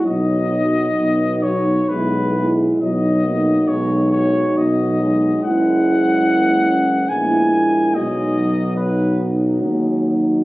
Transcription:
X:1
M:3/4
L:1/8
Q:1/4=69
K:B
V:1 name="Cornet"
d3 c B z | d2 c c d2 | f4 g2 | d2 B z3 |]
V:2 name="French horn section"
D D2 D E E | D D2 D2 D | E4 E2 | D2 D4 |]
V:3 name="Euphonium" clef=bass
F,2 B, z B, G, | F, A, G,2 F, G,- | G,2 A, C B, A, | G, F,2 z G, F, |]
V:4 name="Euphonium" clef=bass
F, F,2 F, G, G, | F, F,2 F,2 F, | G,4 G,2 | F,2 F,4 |]
V:5 name="Tuba" clef=bass
B,,,2 B,,,2 B,,,2 | B,,,2 B,,,2 B,,,2 | F,,,4 A,,,2 | B,,,4 D,,2 |]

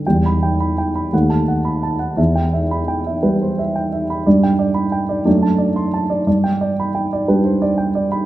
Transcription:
X:1
M:6/8
L:1/16
Q:3/8=58
K:Em
V:1 name="Grand piano"
g b g b g b f a f b a f | e g e b g e B c e g e b | d g d b g d d a d c' a d | d g d b g d B c d g d b |]
V:2 name="Grand piano" clef=bass
[E,,G,]6 [^D,,A,]6 | E,,6 G,6 | [G,,G,D]6 [F,,A,D]6 | G,,6 [G,D]6 |]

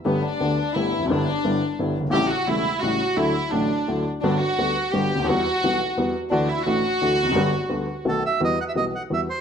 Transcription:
X:1
M:3/4
L:1/16
Q:1/4=173
K:G
V:1 name="Bandoneon"
z12 | z12 | z12 | z12 |
z12 | z12 | z12 | z8 A2 e2 |
[K:Em] ^d2 f e d2 f2 e2 c2 |]
V:2 name="Violin section"
B,2 D6 E4 | D8- D2 z2 | G2 F2 E4 F4 | E4 D6 z2 |
D2 F6 G4 | F8- F2 z2 | D2 E2 F8- | F8 z4 |
[K:Em] z12 |]
V:3 name="Upright piano" clef=bass
[G,,,G,,D,A,B,G]2 z2 [D,,D,A,B,G]2 z2 [G,,,G,,D,A,B,G]2 z/2 E,,/2 =F,,/2 ^F,,/2 | [G,,,G,,D,G,B,E]2 z2 [G,,,G,,D,G,B,E]2 z2 [G,,,G,,D,G,B,E]2 z/2 F,,,/2 G,,,/2 _A,,,/2 | [A,,,A,,^C,G,A,E]2 z2 [E,,,E,,C,G,A,E]2 z2 [A,,,A,,C,G,A,E]2 z2 | [D,,D,F,A,E]2 z2 [A,,,A,,D,F,A,E]2 z2 [D,,D,F,A,E]2 z2 |
[G,,,G,,D,G,B,F]2 z2 [D,,D,G,B,F]2 z2 [G,,,G,,D,G,B,F]2 z/2 ^C,,/2 D,,/2 _E,,/2 | [E,,E,G,B,F]2 z2 [B,,,B,,E,G,B,F]2 z2 [E,,E,G,B,F]2 z2 | [D,,D,E,A,DF]2 z2 [A,,,A,,E,A,DF]2 z2 [D,,D,E,A,DF]2 z/2 E,,/2 =F,,/2 ^F,,/2 | [G,,,G,,D,G,B,F]2 z2 [D,,D,G,B,F]2 z2 [B,,,B,,^D,A,B,F]2 z2 |
[K:Em] [E,,E,G,B,F]2 z2 [B,,,B,,E,G,B,F]2 z2 [E,,E,G,B,F]2 z2 |]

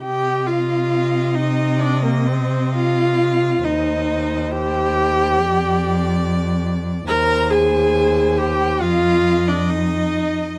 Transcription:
X:1
M:4/4
L:1/16
Q:1/4=69
K:Cm
V:1 name="Violin"
g2 f4 e2 d B c2 f4 | e4 g8- g2 z2 | b2 a4 g2 f3 d e4 |]
V:2 name="Violin"
e16 | c8 d8 | c8 e8 |]
V:3 name="Viola"
G2 F4 E2 D B, C2 F4 | E4 G8- G2 z2 | B2 A4 G2 F3 D E4 |]
V:4 name="Cello" clef=bass
C,16 | E,,8 F,,8 | E,,8 F,,8 |]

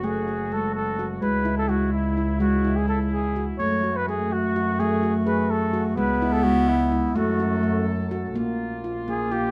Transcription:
X:1
M:5/8
L:1/16
Q:1/4=126
K:F#m
V:1 name="Flugelhorn"
G4 A2 A3 z | B3 A F2 E4 | F3 G A2 G3 z | c3 B G2 F4 |
G3 z B2 A3 z | B3 A F2 E4 | F6 z4 | z6 G2 =G2 |]
V:2 name="Handpan"
A,2 F2 G,4 F2 | G,2 E2 G,4 E2 | G,2 E2 G,4 F2 | A,2 F2 A,4 F2 |
A,2 F2 G4 F2 | G,2 E2 G,4 E2 | A,2 F2 A,4 F2 | ^A,4 ^E2 A,2 E2 |]
V:3 name="Woodwind section"
[F,CF]8- [F,CF]2 | [C,E,E]8- [C,E,E]2- | [C,E,E]8- [C,E,E]2 | [A,F]8- [A,F]2- |
[A,F]8- [A,F]2 | [C,E]8- [C,E]2 | [F,CA]8- [F,CA]2 | [^A,C^E]8- [A,CE]2 |]
V:4 name="Clarinet"
z8 z2 | z8 z2 | z8 z2 | A,8- A,2- |
A,8- A,2 | B,8- B,2 | A,8 z2 | ^A,8- A,2 |]
V:5 name="Double bass" clef=bass
F,,,8- F,,,2 | C,,8- C,,2- | C,,8- C,,2 | F,,8- F,,2- |
F,,8- F,,2 | C,,8- C,,2 | F,,8- F,,2 | ^A,,,8- A,,,2 |]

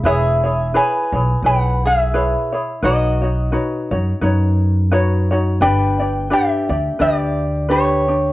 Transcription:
X:1
M:4/4
L:1/8
Q:"Swing" 1/4=86
K:Bmix
V:1 name="Resonator guitar played with a steel bar"
[Ge]2 [Bg]2 [Bf] [Ge]3 | [Fd]3 z4 z | [B=g]2 [=Ge]2 [G=d]2 [Gc]2 |]
V:2 name="Ukulele"
[EGBc] [EGc] [EGBc] [EGc] [EGBc]2 [EGBc] [EGc] | [DFBc] [DFc] [DFBc] [DFc] [DFBc]2 [DFBc] [DFc] | [=D=GB=d] [DGd] [DGBd] [DGd] [DGBd]2 [DGB] [DG] |]
V:3 name="Upright bass" clef=bass
E,,,3 B,,, B,,,4 | B,,,3 F,, F,,4 | =G,,,3 =D,, D,,4 |]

